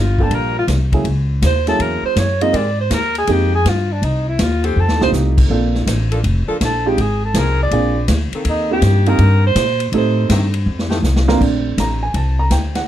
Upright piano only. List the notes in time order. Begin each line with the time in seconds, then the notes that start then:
0.20 G3 A#3 D4 F4 A4
0.93 F#3 A#3 C#4 E4 G#4
1.68 F#3 A#3 C#4 E4 G#4
2.41 G#3 A#3 C4 D#4 F4
3.28 G#3 A#3 C4 D#4 G4
5.01 A3 C4 D#4 F4 G4
5.50 A#3 C4 D4 F4 A4
6.86 G#3 C4 D#4 F4 G4
7.72 A#3 C4 D4 F4 G#4
8.71 A#3 C4 D#4 F4 G4
9.07 A#3 C4 D#4 F4 G4
9.94 A3 C4 D#4 G4 A4
11.28 A#3 C4 D4 F4 A#4
11.41 A3 C4 D4
11.80 A#5
12.03 G#5
12.16 A5
12.39 A#5
12.52 G5
12.76 F#5